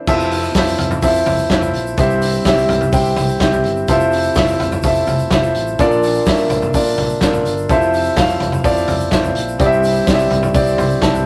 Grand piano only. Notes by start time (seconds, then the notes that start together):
0.07 C3 E4 F4 A4 C5 E5
0.56 E4 F4 A4 C5 E5
1.02 E4 F4 A4 C5 E5
1.50 E4 F4 A4 C5 E5
1.98 G2 C4 E4 G4 C5 E5
2.45 C4 E4 G4 C5 E5
2.92 C4 E4 G4 C5 G5
3.40 C4 E4 G4 C5 E5
3.89 C3 E4 F4 A4 C5 E5
4.36 E4 F4 A4 C5 E5
4.84 E4 F4 A4 C5 E5
5.31 E4 F4 A4 C5 E5
5.79 A#2 F3 D4 F4 A4 A#4 D5
6.26 D4 F4 A4 A#4 E5
6.74 D4 F4 A4 A#4 D5
7.22 D4 F4 A4 A#4 D5
7.70 C3 E4 F4 A4 C5 E5
8.16 F4 A4 C5 E5 F5
8.64 E4 F4 A4 C5 D5
9.11 E4 F4 A4 C5 E5
9.59 G2 C4 E4 G4 C5 D5
9.66 E5
10.06 C4 E4 G4 C5 D5
10.14 E5
10.54 C4 E4 G4 C5 D5
10.79 C6
11.02 C4 E4 G4 C5 E5 A5